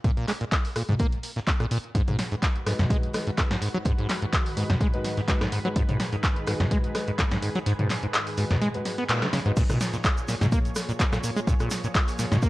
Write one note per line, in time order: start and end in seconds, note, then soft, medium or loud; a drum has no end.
0.04 0.12 A#2 loud
0.04 kick loud
0.04 closed hi-hat medium
0.17 0.26 A#2 medium
0.17 closed hi-hat soft
0.28 0.33 G#3 loud
0.28 clap medium
0.28 closed hi-hat medium
0.28 open hi-hat loud
0.41 0.45 A#2 medium
0.41 closed hi-hat soft
0.52 kick loud
0.52 snare loud
0.52 clap loud
0.52 closed hi-hat medium
0.65 open hi-hat medium
0.76 0.83 A#2 medium
0.76 cross-stick medium
0.76 closed hi-hat medium
0.76 open hi-hat loud
0.89 0.95 G#2 loud
0.89 closed hi-hat soft
0.89 mid tom medium
0.99 1.07 A#3 loud
0.99 kick loud
0.99 closed hi-hat medium
1.12 closed hi-hat soft
1.23 closed hi-hat medium
1.23 open hi-hat loud
1.36 1.40 A#2 medium
1.36 snare soft
1.36 closed hi-hat soft
1.47 1.52 A#2 medium
1.47 kick loud
1.47 snare loud
1.47 clap loud
1.47 closed hi-hat medium
1.60 1.66 A#2 loud
1.60 cross-stick medium
1.60 closed hi-hat soft
1.71 1.78 A#2 loud
1.71 closed hi-hat medium
1.71 open hi-hat loud
1.84 closed hi-hat soft
1.95 2.02 G#2 loud
1.95 9.53 G#2 medium
1.95 9.53 D#3 medium
1.95 5.72 F#4 medium
1.95 9.53 B4 medium
1.95 kick loud
1.95 closed hi-hat medium
2.07 2.17 G#2 medium
2.07 closed hi-hat soft
2.07 mid tom medium
2.18 snare medium
2.18 closed hi-hat medium
2.18 open hi-hat loud
2.32 2.35 G#2 medium
2.32 closed hi-hat soft
2.43 kick loud
2.43 snare loud
2.43 clap loud
2.43 closed hi-hat medium
2.55 closed hi-hat soft
2.66 2.73 G#2 medium
2.66 3.11 G#3 medium
2.66 3.11 D#4 medium
2.66 3.11 F#4 medium
2.66 3.11 B4 medium
2.66 cross-stick medium
2.66 snare soft
2.66 closed hi-hat medium
2.66 open hi-hat loud
2.79 2.85 F#2 medium
2.79 snare medium
2.79 closed hi-hat soft
2.79 mid tom medium
2.90 2.97 G#3 loud
2.90 kick loud
2.90 closed hi-hat medium
3.03 closed hi-hat soft
3.13 3.28 G#3 medium
3.13 3.28 D#4 medium
3.13 3.28 F#4 medium
3.13 3.28 B4 medium
3.13 cross-stick medium
3.13 snare soft
3.13 closed hi-hat medium
3.13 open hi-hat loud
3.27 3.30 G#2 medium
3.27 closed hi-hat soft
3.37 3.42 A#2 loud
3.37 kick loud
3.37 cross-stick medium
3.37 snare loud
3.37 clap loud
3.37 closed hi-hat medium
3.51 3.57 G#2 medium
3.51 snare medium
3.51 closed hi-hat soft
3.62 3.69 G#2 medium
3.62 closed hi-hat medium
3.62 open hi-hat loud
3.74 3.78 F#3 loud
3.74 closed hi-hat soft
3.85 3.93 G#2 loud
3.85 kick loud
3.85 closed hi-hat medium
3.98 4.07 G#2 medium
3.98 closed hi-hat soft
4.09 snare medium
4.09 clap medium
4.09 closed hi-hat medium
4.09 open hi-hat loud
4.22 4.26 G#2 medium
4.22 closed hi-hat soft
4.33 kick loud
4.33 snare loud
4.33 clap loud
4.33 closed hi-hat medium
4.46 open hi-hat medium
4.57 4.64 G#2 medium
4.57 4.71 G#3 medium
4.57 4.71 D#4 medium
4.57 4.71 F#4 medium
4.57 4.71 B4 medium
4.57 closed hi-hat medium
4.57 open hi-hat loud
4.70 4.76 F#2 loud
4.70 snare medium
4.70 mid tom medium
4.81 4.88 G#3 loud
4.81 kick loud
4.81 closed hi-hat medium
4.94 5.14 G#3 medium
4.94 5.14 D#4 medium
4.94 5.14 F#4 medium
4.94 5.14 B4 loud
4.94 closed hi-hat soft
5.04 snare soft
5.04 closed hi-hat medium
5.04 open hi-hat loud
5.17 5.21 G#2 medium
5.17 snare soft
5.17 closed hi-hat soft
5.28 5.33 A#2 loud
5.28 5.42 G#3 medium
5.28 5.42 D#4 medium
5.28 5.42 F#4 medium
5.28 5.42 B4 loud
5.28 kick loud
5.28 snare loud
5.28 clap loud
5.28 closed hi-hat medium
5.41 5.47 G#2 medium
5.41 cross-stick medium
5.41 snare medium
5.41 closed hi-hat soft
5.52 5.59 G#2 medium
5.52 closed hi-hat medium
5.52 open hi-hat loud
5.65 5.69 F#3 medium
5.65 5.77 G#3 loud
5.65 5.77 D#4 medium
5.65 5.77 F#4 medium
5.65 5.77 B4 loud
5.65 closed hi-hat soft
5.76 5.83 G#2 loud
5.76 9.53 G#4 medium
5.76 kick loud
5.76 closed hi-hat loud
5.76 closed hi-hat medium
5.89 5.98 G#2 medium
5.89 closed hi-hat soft
5.89 mid tom medium
6.00 snare medium
6.00 closed hi-hat medium
6.00 open hi-hat loud
6.12 6.16 G#2 medium
6.12 closed hi-hat soft
6.23 kick loud
6.23 snare loud
6.23 clap loud
6.23 closed hi-hat medium
6.23 closed hi-hat loud
6.36 closed hi-hat soft
6.46 6.54 G#2 medium
6.46 6.92 G#3 medium
6.46 6.92 D#4 medium
6.46 6.92 F#4 medium
6.46 6.92 B4 medium
6.46 cross-stick medium
6.46 snare soft
6.46 closed hi-hat medium
6.46 open hi-hat loud
6.60 6.66 F#2 loud
6.60 snare medium
6.60 closed hi-hat soft
6.60 mid tom medium
6.71 6.78 G#3 loud
6.71 kick loud
6.71 closed hi-hat loud
6.71 closed hi-hat medium
6.84 closed hi-hat soft
6.95 7.09 G#3 medium
6.95 7.09 D#4 medium
6.95 7.09 F#4 medium
6.95 7.09 B4 medium
6.95 cross-stick medium
6.95 snare soft
6.95 closed hi-hat medium
6.95 open hi-hat loud
7.07 7.11 G#2 medium
7.07 closed hi-hat soft
7.18 7.23 A#2 loud
7.18 kick loud
7.18 cross-stick medium
7.18 clap loud
7.18 closed hi-hat medium
7.18 closed hi-hat loud
7.31 7.38 G#2 medium
7.31 snare medium
7.31 closed hi-hat medium
7.31 closed hi-hat soft
7.42 7.50 G#2 medium
7.42 closed hi-hat soft
7.42 open hi-hat loud
7.55 7.59 F#3 loud
7.55 closed hi-hat medium
7.55 closed hi-hat soft
7.66 7.73 G#2 loud
7.66 closed hi-hat loud
7.66 closed hi-hat medium
7.79 7.88 G#2 medium
7.79 closed hi-hat soft
7.79 mid tom medium
7.90 snare medium
7.90 clap medium
7.90 closed hi-hat medium
7.90 open hi-hat loud
8.03 8.07 G#2 medium
8.03 closed hi-hat soft
8.14 snare loud
8.14 clap loud
8.14 closed hi-hat loud
8.14 closed hi-hat medium
8.27 open hi-hat medium
8.37 8.45 G#2 medium
8.37 8.52 G#3 medium
8.37 8.52 D#4 medium
8.37 8.52 F#4 medium
8.37 8.52 B4 medium
8.37 closed hi-hat medium
8.37 open hi-hat loud
8.51 8.57 F#2 loud
8.51 snare medium
8.51 closed hi-hat soft
8.51 mid tom medium
8.62 8.69 G#3 loud
8.62 closed hi-hat loud
8.62 closed hi-hat medium
8.74 8.95 G#3 medium
8.74 8.95 D#4 medium
8.74 8.95 F#4 medium
8.74 8.95 B4 loud
8.74 closed hi-hat soft
8.85 snare soft
8.85 closed hi-hat medium
8.85 open hi-hat loud
8.98 9.04 B3 medium
8.98 snare soft
8.98 closed hi-hat soft
9.09 9.23 A#2 medium
9.09 9.23 G#3 medium
9.09 9.23 D#4 medium
9.09 9.23 F#4 medium
9.09 9.23 B4 loud
9.09 clap loud
9.09 closed hi-hat loud
9.22 9.28 D#3 medium
9.22 cross-stick medium
9.22 snare medium
9.22 closed hi-hat soft
9.33 9.40 C#3 medium
9.33 snare medium
9.33 closed hi-hat medium
9.33 open hi-hat loud
9.46 9.52 G#2 loud
9.46 9.56 G#3 loud
9.46 9.56 D#4 medium
9.46 9.56 F#4 medium
9.46 9.56 B4 loud
9.46 closed hi-hat soft
9.57 9.64 A#2 loud
9.57 12.49 A#2 medium
9.57 12.49 F3 medium
9.57 12.49 G#4 medium
9.57 12.49 C#5 medium
9.57 kick loud
9.57 closed hi-hat loud
9.57 closed hi-hat medium
9.57 crash loud
9.57 shaker medium
9.69 9.79 A#2 medium
9.69 cross-stick medium
9.69 closed hi-hat soft
9.69 mid tom medium
9.69 shaker soft
9.80 snare medium
9.80 closed hi-hat medium
9.80 open hi-hat loud
9.80 shaker medium
9.93 9.97 A#2 medium
9.93 closed hi-hat soft
9.93 shaker soft
10.04 kick loud
10.04 snare loud
10.04 clap loud
10.04 closed hi-hat medium
10.04 closed hi-hat loud
10.04 shaker medium
10.17 closed hi-hat soft
10.17 shaker soft
10.28 10.35 A#2 medium
10.28 snare soft
10.28 closed hi-hat medium
10.28 open hi-hat loud
10.28 shaker medium
10.41 10.47 G#2 loud
10.41 snare medium
10.41 closed hi-hat soft
10.41 mid tom loud
10.41 shaker soft
10.52 10.59 A#3 loud
10.52 kick loud
10.52 closed hi-hat loud
10.52 closed hi-hat medium
10.52 shaker medium
10.65 closed hi-hat soft
10.65 shaker soft
10.75 cross-stick medium
10.75 snare soft
10.75 closed hi-hat medium
10.75 open hi-hat loud
10.75 shaker loud
10.89 10.92 A#2 medium
10.89 closed hi-hat soft
10.89 shaker soft
10.99 11.04 B2 loud
10.99 kick loud
10.99 snare loud
10.99 clap loud
10.99 closed hi-hat loud
10.99 closed hi-hat medium
10.99 shaker soft
11.12 11.19 A#2 medium
11.12 cross-stick medium
11.12 snare medium
11.12 closed hi-hat soft
11.12 shaker soft
11.24 11.31 A#2 medium
11.24 closed hi-hat medium
11.24 open hi-hat loud
11.24 shaker loud
11.36 11.40 G#3 loud
11.36 closed hi-hat soft
11.36 shaker soft
11.47 11.54 A#2 loud
11.47 kick loud
11.47 closed hi-hat loud
11.47 shaker medium
11.60 11.69 A#2 medium
11.60 cross-stick medium
11.60 closed hi-hat soft
11.60 shaker soft
11.70 snare medium
11.70 closed hi-hat medium
11.70 open hi-hat loud
11.70 shaker medium
11.84 11.88 A#2 medium
11.84 closed hi-hat soft
11.84 shaker soft
11.95 kick loud
11.95 snare loud
11.95 clap loud
11.95 closed hi-hat medium
11.95 closed hi-hat loud
11.95 shaker soft
12.08 open hi-hat medium
12.08 shaker soft
12.19 12.26 A#2 medium
12.19 snare soft
12.19 closed hi-hat medium
12.19 open hi-hat loud
12.19 shaker loud
12.32 12.38 G#2 loud
12.32 snare medium
12.32 mid tom loud
12.32 shaker soft
12.42 12.49 A#3 loud
12.42 kick loud
12.42 closed hi-hat loud
12.42 shaker medium